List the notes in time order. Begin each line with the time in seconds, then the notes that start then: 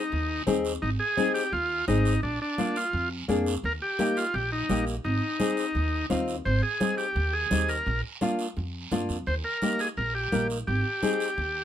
Already playing: D#4
0.12 D#2, high conga, long guiro
0.47 D#2 C4 D#4 G#4, high conga, short guiro
0.65 short guiro
0.82 G#1 D#4, high conga, long guiro
1.00 G#4
1.17 C4 D#4 G#4, high conga, short guiro
1.34 G4, short guiro
1.52 D#2 F4, high conga, long guiro
1.88 G#1 C4 D#4 G#4, high conga, short guiro
2.05 short guiro
2.23 A#1 D4, high conga, long guiro
2.42 D4
2.58 A#3 D4 F4, high conga, short guiro
2.76 F4, short guiro
2.93 F2, high conga, long guiro
3.28 F2 A#3 D4 G#4, high conga, short guiro
3.46 short guiro
3.63 D#2 A#4, high conga, long guiro
3.82 G4
3.99 A#3 D#4 G4, high conga, short guiro
4.17 F4, short guiro
4.34 A#1 G4, high conga, long guiro
4.52 D#4
4.69 A#1 A#3 D#4 G4, high conga, short guiro
4.87 short guiro
5.04 G#1 D#4, high conga, long guiro
5.39 C4 D#4 G#4, high conga, short guiro
5.57 short guiro
5.75 D#2, high conga, long guiro
6.10 D#2 C4 D#4 F4, high conga, short guiro
6.28 short guiro
6.45 G#1 C5, high conga, long guiro
6.63 G#4
6.80 C4 D#4 G#4, high conga, short guiro
6.98 G4, short guiro
7.15 D#2, high conga, long guiro
7.33 G#4
7.51 D#2 C4 D#4 G4, high conga, short guiro
7.69 A#4, short guiro
7.86 A#1, high conga, long guiro
8.21 A#3 D4 F4, high conga, short guiro
8.39 short guiro
8.57 F2, high conga, long guiro
8.91 G2 A#3 D4 F4, high conga, short guiro
9.09 F2, short guiro
9.27 D#2 C5, high conga, long guiro
9.45 A#4
9.62 A#3 D#4 G4, high conga, short guiro
9.79 G#4, short guiro
9.97 A#1 A#4, high conga, long guiro
10.15 G4
10.32 A#1 A#3 D#4 A#4, high conga, short guiro
10.50 short guiro
10.67 G#1 G4, high conga, long guiro
11.02 C4 D#4 G#4, high conga, short guiro
11.20 short guiro
11.37 D#2, high conga, long guiro